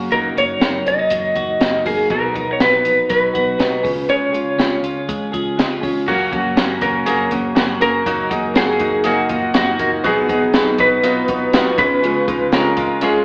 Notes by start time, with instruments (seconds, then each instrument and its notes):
Already playing: clean electric guitar F#2 F#3 C#4 F#4, steel-string acoustic guitar A#3 C#4 F#4
0.11 picked electric bass F#1, clean electric guitar F#2 A#4, steel-string acoustic guitar F#3 A#3 D#4 F#4, kick, closed hi-hat
0.35 picked electric bass F#1, steel-string acoustic guitar A#3 D#4 F#4, clean electric guitar C#5, closed hi-hat
0.59 picked electric bass F#1, steel-string acoustic guitar F#3 A#3 D#4 F#4, snare, closed hi-hat
0.86 picked electric bass F1, clean electric guitar C#4 D#5, closed hi-hat
0.99 clean electric guitar D#4
1.10 picked electric bass F#1, clean electric guitar F#3, kick, closed hi-hat
1.35 picked electric bass F#1, steel-string acoustic guitar A#3 D#4 F#4, kick, closed hi-hat
1.60 picked electric bass F#1, steel-string acoustic guitar F#3 A#3 D#4 F#4, snare, closed hi-hat
1.85 picked electric bass F#1, steel-string acoustic guitar A#3 D#4 F#4, clean electric guitar G#4, kick, open hi-hat
2.09 picked electric bass B1, steel-string acoustic guitar B2 F#3 B3 D#4 F#4, clean electric guitar A#4, kick, closed hi-hat
2.34 picked electric bass B1, steel-string acoustic guitar B3 D#4 F#4, kick, closed hi-hat
2.53 clean electric guitar C#5
2.60 picked electric bass B1, steel-string acoustic guitar F#3 B3 D#4 F#4, clean electric guitar B4, snare, closed hi-hat
2.84 picked electric bass A#1, clean electric guitar D#4, closed hi-hat
3.10 picked electric bass B1, clean electric guitar F#3 B4, kick, closed hi-hat
3.34 picked electric bass B1, steel-string acoustic guitar B3 D#4 F#4, kick, closed hi-hat
3.58 picked electric bass B1, steel-string acoustic guitar F#3 B3 D#4 F#4, snare, closed hi-hat
3.83 picked electric bass C#2, clean electric guitar C#3, steel-string acoustic guitar C#4 F4 G#4, kick, open hi-hat
4.08 steel-string acoustic guitar C#3 G#3 C#4 F4 G#4, clean electric guitar C#5, closed hi-hat
4.32 picked electric bass C#2, steel-string acoustic guitar C#4 F4 G#4, closed hi-hat
4.58 picked electric bass C#2, steel-string acoustic guitar G#3 C#4 F4 G#4, snare, closed hi-hat
4.83 picked electric bass C#2, clean electric guitar F4, closed hi-hat
5.09 picked electric bass C#2, clean electric guitar G#3, kick, closed hi-hat
5.32 picked electric bass C#2, steel-string acoustic guitar C#4 F4 G#4, kick, closed hi-hat
5.57 picked electric bass C#2, steel-string acoustic guitar G#3 C#4 F4 G#4, clean electric guitar D#4, snare, closed hi-hat
5.71 clean electric guitar F4
5.81 picked electric bass C#2, steel-string acoustic guitar C#4 F4 G#4, kick, open hi-hat
6.07 picked electric bass F#1, steel-string acoustic guitar F#2 C#3 F#3 A#3 C#4 F#4, upright piano A#3 C#4 F#4, clean electric guitar F#4, kick, crash
6.31 steel-string acoustic guitar F#3 A#3 C#4 F#4, upright piano A#3 C#4 F#4, kick, closed hi-hat
6.45 picked electric bass F#1
6.56 picked electric bass F#1, steel-string acoustic guitar F#2 C#3 F#3 A#3 C#4 F#4, upright piano A#3 C#4 F#4, snare, closed hi-hat
6.81 picked electric bass F#1, upright piano A#3 C#4 F#4, clean electric guitar C#4 A#4, kick, snare, closed hi-hat
7.06 picked electric bass F#1, steel-string acoustic guitar F#3 A#3 C#4, upright piano A#3 C#4 G#4, closed hi-hat
7.10 steel-string acoustic guitar F#4
7.31 picked electric bass F#1, steel-string acoustic guitar F#3 A#3 C#4 F#4, upright piano A#3 C#4 F#4, kick, closed hi-hat
7.55 picked electric bass F#1, steel-string acoustic guitar F#2 C#3 F#3 A#3 C#4 F#4, upright piano A#3 C#4 F#4, snare, closed hi-hat
7.81 picked electric bass F#1, steel-string acoustic guitar F#3 A#3 C#4 F#4, upright piano A#3 C#4 G#4, clean electric guitar A#4, closed hi-hat
8.05 picked electric bass F#1, steel-string acoustic guitar F#3 A#3 D#4 F#4, upright piano A#3 D#4 F#4, kick, closed hi-hat
8.31 upright piano A#3 D#4 G#4, steel-string acoustic guitar A#3 D#4 F#4, kick, closed hi-hat
8.44 picked electric bass F#1
8.54 picked electric bass F#1, steel-string acoustic guitar F#3 A#3 D#4, upright piano A#3 D#4 F#4, clean electric guitar G#4, snare, closed hi-hat
8.58 steel-string acoustic guitar F#4
8.80 picked electric bass F#1, upright piano A#3 D#4 F#4, clean electric guitar D#4, kick, closed hi-hat
9.04 picked electric bass F#1, steel-string acoustic guitar F#3 A#3 D#4, upright piano A#3 D#4 G#4, clean electric guitar F#4, closed hi-hat
9.08 steel-string acoustic guitar F#4
9.29 picked electric bass F#1, upright piano A#3 D#4 F4, steel-string acoustic guitar D#4 F#4, kick, closed hi-hat
9.33 steel-string acoustic guitar A#3
9.54 picked electric bass F#1, steel-string acoustic guitar F#3 A#3 D#4 F#4, upright piano A#3 D#4 F#4, clean electric guitar F#4, snare, closed hi-hat
9.79 picked electric bass F#1, upright piano A#3 D#4 F4, steel-string acoustic guitar A#3 D#4 F#4, kick, closed hi-hat
10.04 picked electric bass B1, steel-string acoustic guitar B2 F#3 B3 D#4 F#4, upright piano B3 D#4 F#4, clean electric guitar G#4, kick, closed hi-hat
10.28 upright piano B3 D#4 F#4, steel-string acoustic guitar B3 D#4 F#4, kick, closed hi-hat
10.42 picked electric bass B1
10.54 picked electric bass B1, steel-string acoustic guitar B2 F#3 B3 D#4 F#4, upright piano B3 D#4 F#4, snare, closed hi-hat
10.78 picked electric bass B1, upright piano B3 D#4 F#4, clean electric guitar D#4 B4, kick, closed hi-hat
11.03 picked electric bass B1, steel-string acoustic guitar F#3 B3 D#4 F#4, upright piano B3 D#4 F4, closed hi-hat
11.28 picked electric bass B1, upright piano B3 D#4 F#4, steel-string acoustic guitar B3 D#4 F#4, kick, closed hi-hat
11.53 picked electric bass B1, steel-string acoustic guitar B2 F#3 B3 D#4 F#4, upright piano B3 D#4 F4, snare, closed hi-hat
11.78 picked electric bass C#2, clean electric guitar C#3 B4, upright piano G#3 C#4 F4, steel-string acoustic guitar C#4 F4 G#4, kick, closed hi-hat
12.02 steel-string acoustic guitar C#3 G#3 C#4 F4 G#4, closed hi-hat
12.27 upright piano G#3 C#4 D#4, steel-string acoustic guitar C#4 F4 G#4, kick, closed hi-hat
12.40 picked electric bass C#2
12.52 picked electric bass C#2, steel-string acoustic guitar C#3 G#3 C#4 F4 G#4, upright piano G#3 C#4 G#4, clean electric guitar A#4, snare, closed hi-hat
12.77 picked electric bass C#2, upright piano G#3 C#4 F4, clean electric guitar F4, kick, closed hi-hat
13.01 picked electric bass C#2, steel-string acoustic guitar G#3 C#4 F4 G#4, upright piano G#3 C#4 F4, clean electric guitar G#4, closed hi-hat